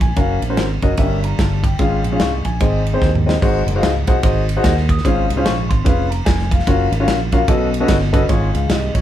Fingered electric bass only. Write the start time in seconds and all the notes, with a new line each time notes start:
Already playing: A#1
0.17 F#1
0.42 A#1
0.57 G#1
0.83 F#1
0.98 G1
1.39 G1
1.79 G#1
2.04 A#1
2.20 C2
2.45 A#1
2.61 G#1
3.02 D#2
3.42 G#1
3.67 F#1
3.82 C#2
4.08 C2
4.24 G#1
4.64 D#2
5.05 G#1
5.30 C2
5.45 A#1
5.71 G#1
5.86 F1
6.27 F1
6.67 F#1
6.92 G#1
7.08 A#1
7.48 B1
7.89 G1
8.29 G#1
8.55 C#2
8.70 C2
8.95 A#1